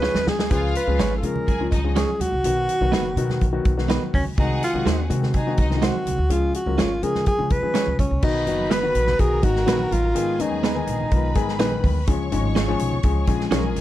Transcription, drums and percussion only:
0.03 snare soft
0.03 muted conga soft
0.14 snare medium
0.14 high conga medium
0.27 snare medium
0.27 high conga medium
0.27 low conga medium
0.39 snare medium
0.51 kick loud
0.51 closed hi-hat medium
0.51 muted conga soft
0.75 closed hi-hat medium
0.88 high conga soft
1.00 snare loud
1.00 closed hi-hat medium
1.00 high conga medium
1.23 closed hi-hat medium
1.36 low conga medium
1.48 kick medium
1.48 closed hi-hat medium
1.48 muted conga soft
1.48 high conga medium
1.71 kick medium
1.71 closed hi-hat medium
1.71 muted conga soft
1.71 high conga medium
1.96 snare loud
1.96 closed hi-hat medium
2.09 high conga medium
2.21 closed hi-hat medium
2.21 muted conga soft
2.21 high conga medium
2.21 low conga medium
2.44 closed hi-hat medium
2.69 closed hi-hat medium
2.81 high conga medium
2.93 snare loud
2.93 closed hi-hat medium
2.93 high conga medium
3.17 closed hi-hat medium
3.30 snare soft
3.30 low conga medium
3.41 kick medium
3.41 closed hi-hat medium
3.41 muted conga soft
3.41 high conga medium
3.65 kick medium
3.65 closed hi-hat medium
3.65 muted conga soft
3.65 high conga medium
3.78 snare soft
3.89 snare loud
3.89 closed hi-hat medium
3.89 muted conga soft
4.03 high conga medium
4.14 kick medium
4.14 open hi-hat medium
4.14 muted conga soft
4.14 high conga medium
4.14 low conga medium
4.38 kick loud
4.38 closed hi-hat medium
4.38 muted conga soft
4.63 closed hi-hat medium
4.63 muted conga soft
4.76 high conga medium
4.87 snare loud
4.87 closed hi-hat medium
4.87 high conga medium
5.10 closed hi-hat medium
5.10 muted conga soft
5.23 snare soft
5.23 low conga medium
5.34 kick medium
5.34 closed hi-hat medium
5.34 muted conga soft
5.34 high conga medium
5.57 kick medium
5.57 closed hi-hat medium
5.57 muted conga soft
5.57 high conga medium
5.71 snare soft
5.82 snare loud
5.82 closed hi-hat medium
5.82 muted conga soft
5.95 high conga medium
6.07 closed hi-hat medium
6.07 muted conga soft
6.07 high conga medium
6.07 low conga medium
6.30 closed hi-hat medium
6.30 muted conga soft
6.54 closed hi-hat medium
6.68 high conga medium
6.79 snare loud
6.79 closed hi-hat medium
6.79 muted conga soft
6.79 high conga medium
7.03 closed hi-hat medium
7.03 muted conga soft
7.15 snare soft
7.15 low conga medium
7.26 kick medium
7.26 closed hi-hat medium
7.26 high conga medium
7.50 kick medium
7.50 closed hi-hat medium
7.50 high conga medium
7.75 snare loud
7.75 closed hi-hat medium
7.87 high conga medium
7.99 kick medium
7.99 closed hi-hat medium
7.99 muted conga soft
7.99 high conga medium
7.99 low conga medium
8.23 kick loud
8.23 crash loud
8.23 muted conga soft
8.47 closed hi-hat medium
8.47 muted conga soft
8.59 high conga medium
8.71 snare loud
8.71 closed hi-hat medium
8.71 muted conga soft
8.71 high conga medium
8.95 closed hi-hat medium
9.07 snare soft
9.07 low conga medium
9.19 kick medium
9.19 closed hi-hat medium
9.19 high conga medium
9.43 kick medium
9.43 closed hi-hat medium
9.43 high conga medium
9.56 snare soft
9.68 snare loud
9.68 closed hi-hat medium
9.80 high conga medium
9.92 closed hi-hat medium
9.92 muted conga soft
9.92 high conga medium
9.92 low conga medium
10.16 closed hi-hat loud
10.16 muted conga soft
10.40 closed hi-hat medium
10.52 high conga medium
10.64 snare loud
10.64 closed hi-hat medium
10.64 high conga medium
10.87 closed hi-hat medium
10.87 muted conga soft
11.00 low conga medium
11.11 kick medium
11.11 closed hi-hat medium
11.11 muted conga soft
11.11 high conga medium
11.35 kick medium
11.35 closed hi-hat medium
11.35 high conga medium
11.48 snare soft
11.59 snare loud
11.59 closed hi-hat medium
11.59 muted conga soft
11.72 high conga medium
11.84 kick medium
11.84 open hi-hat soft
11.84 muted conga soft
11.84 high conga medium
11.84 low conga medium
12.07 kick loud
12.07 closed hi-hat medium
12.32 closed hi-hat medium
12.44 high conga medium
12.56 snare loud
12.56 closed hi-hat medium
12.56 high conga medium
12.79 closed hi-hat medium
12.79 muted conga soft
12.91 low conga medium
13.03 kick medium
13.03 closed hi-hat medium
13.03 muted conga soft
13.03 high conga medium
13.27 kick medium
13.27 closed hi-hat medium
13.27 high conga medium
13.40 snare soft
13.52 snare loud
13.52 closed hi-hat medium
13.52 muted conga soft
13.64 high conga medium
13.76 closed hi-hat medium
13.76 muted conga soft
13.76 high conga medium
13.76 low conga medium

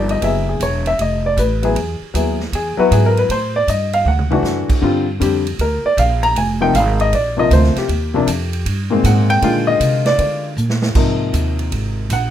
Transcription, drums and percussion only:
0.09 ride soft
0.22 kick soft
0.22 ride medium
0.60 kick soft
0.60 hi-hat pedal medium
0.60 ride medium
0.86 ride soft
0.99 kick soft
0.99 ride medium
1.37 kick soft
1.37 hi-hat pedal medium
1.37 ride medium
1.63 ride soft
1.76 kick soft
1.76 ride medium
2.14 kick soft
2.14 hi-hat pedal medium
2.14 ride medium
2.40 snare soft
2.53 kick soft
2.53 ride medium
2.91 kick soft
2.91 hi-hat pedal medium
2.91 ride medium
3.17 ride soft
3.29 kick soft
3.29 ride medium
3.68 kick soft
3.68 hi-hat pedal medium
3.68 ride medium
3.93 ride soft
4.06 mid tom medium
4.19 mid tom medium
4.31 mid tom medium
4.44 snare medium
4.44 hi-hat pedal medium
4.70 kick medium
4.70 crash medium
4.83 kick soft
5.21 kick soft
5.21 hi-hat pedal medium
5.21 ride medium
5.47 ride medium
5.59 kick soft
5.59 ride medium
5.97 kick soft
5.97 hi-hat pedal medium
5.97 ride medium
6.23 ride medium
6.36 kick soft
6.36 ride medium
6.74 kick soft
6.74 hi-hat pedal medium
6.74 ride medium
7.00 ride soft
7.13 kick soft
7.13 ride medium
7.51 kick soft
7.51 hi-hat pedal medium
7.51 ride medium
7.63 snare soft
7.76 snare soft
7.76 ride soft
7.89 kick soft
7.89 ride medium
8.27 kick soft
8.27 hi-hat pedal medium
8.27 ride medium
8.53 ride medium
8.66 kick soft
8.66 ride medium
9.04 kick soft
9.04 hi-hat pedal medium
9.04 ride medium
9.30 ride soft
9.42 kick soft
9.42 ride medium
9.80 kick soft
9.80 hi-hat pedal medium
9.80 ride medium
10.05 snare medium
10.05 ride medium
10.19 kick soft
10.19 ride medium
10.57 hi-hat pedal medium
10.70 snare medium
10.82 snare medium
10.95 kick medium
10.95 crash medium
11.33 kick soft
11.33 hi-hat pedal medium
11.33 ride medium
11.59 ride soft
11.72 kick soft
11.72 ride medium
12.10 kick soft
12.10 hi-hat pedal medium
12.10 ride medium

